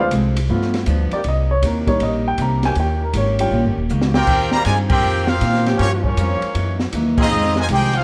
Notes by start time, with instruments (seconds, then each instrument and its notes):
Already playing: upright bass D2, trombone section F3 C4 D4 G#4
0.00 grand piano D5
0.11 upright bass C2, steel-string acoustic guitar D3 G#3 C4 F4, kick, hi-hat pedal, ride
0.36 ride
0.49 steel-string acoustic guitar G2 F3 B3 D4, upright bass G2, grand piano A3 B3 F4, kick
0.62 snare
0.74 snare, ride
0.86 upright bass D2, steel-string acoustic guitar G2 F3 B3 D4, kick, hi-hat pedal, ride
1.11 trombone section D#3 A#3 C4 G4, grand piano D5, muted upright bass stroke, ride
1.24 upright bass C2, steel-string acoustic guitar C3 A#3 D#4 G4, kick, ride
1.29 grand piano D#5
1.51 grand piano C#5
1.62 upright bass D#2, steel-string acoustic guitar C3 A#3 D#4 G4, grand piano A#4, kick, hi-hat pedal, ride
1.87 grand piano G3 A#3 D#4 C#5, kick, ride
2.00 upright bass A#1, steel-string acoustic guitar C3 A#3 D#4 G4, grand piano D#5, ride
2.28 grand piano G5
2.38 upright bass C2, steel-string acoustic guitar C3 A#3 D#4 G4, grand piano A#5, kick, hi-hat pedal, ride
2.63 trombone section D#3 A#3 C#4 G4, grand piano G#5, snare, ride
2.75 upright bass D#2, trombone section D#3 A#3 C#4 G4, steel-string acoustic guitar D#3 A#3 C#4 G4, kick, ride
2.80 grand piano G5
3.03 grand piano A#4
3.13 upright bass G#1, steel-string acoustic guitar D#3 A#3 C#4 G4, grand piano C#5, kick, hi-hat pedal, ride
3.39 grand piano G3 C#4 F4 G5, ride
3.51 upright bass A#1, steel-string acoustic guitar D#3 A#3 C#4 G4, kick
3.65 upright bass G1
3.77 upright bass D#1
3.89 upright bass C#2, steel-string acoustic guitar D#3 A#3 C#4 G4, hi-hat pedal
4.02 snare
4.14 trombone section A#3 C4 G4, trumpet section F4 A#4 C5 G5, snare
4.27 upright bass D#2, steel-string acoustic guitar D#3 C4 F4 G4, kick, crash
4.52 trombone section C3 G3 A#3, trumpet section G4 C5 F5 A#5, snare
4.64 upright bass G2, steel-string acoustic guitar D#3 C4 F4 G4, trombone section G#3, trumpet section F4 A#4 D5 G#5, kick, hi-hat pedal, ride
4.88 trombone section A#3 C4 G4, trumpet section F4 A#4 C5 G5, kick, crash
5.03 upright bass F2, steel-string acoustic guitar D#3 C4 F4 G4
5.26 trombone section A#3 C4 F4, trumpet section C4 G4 A#4 F5, snare
5.41 upright bass A#2, steel-string acoustic guitar D#3 C4 F4 G4, kick, hi-hat pedal, ride
5.54 snare
5.66 trombone section F3 A#3 C#4 G4, snare, ride
5.76 upright bass G2, steel-string acoustic guitar G2, trombone section F3 A#3 C#4, trumpet section F4, kick, ride
5.80 steel-string acoustic guitar F3 A#3 C#4, trumpet section A#3 G4 C#5
6.01 trombone section F3 A#3 C#4, trumpet section G4, kick
6.06 trumpet section A#3 F4 C#5
6.17 upright bass F2, steel-string acoustic guitar G2 F3 A#3 C#4, kick, hi-hat pedal, ride
6.42 muted upright bass stroke, ride
6.55 steel-string acoustic guitar F#2 E3 A#3 D#4, upright bass F#2, kick, ride
6.80 snare
6.93 upright bass D#2, steel-string acoustic guitar F#2 E3 A#3 D#4, kick, hi-hat pedal, ride
7.17 trombone section F3 G#3 C4 D#4 G#4, kick, crash
7.22 trumpet section C4 F4 G#4 D#5
7.31 steel-string acoustic guitar F2 D#3 G#3 C4, upright bass F2
7.43 snare
7.56 trombone section C3 D#3 G#3, snare
7.61 trumpet section F4 C5 D#5 G#5
7.68 upright bass C2, steel-string acoustic guitar F2 D#3 G#3 C4, trombone section G4, kick, hi-hat pedal, ride
7.73 trumpet section D#4 G#4 C5 G5
7.93 trombone section G#3 C4 F4, trumpet section D#4 C5 F5, ride
7.97 trumpet section G#4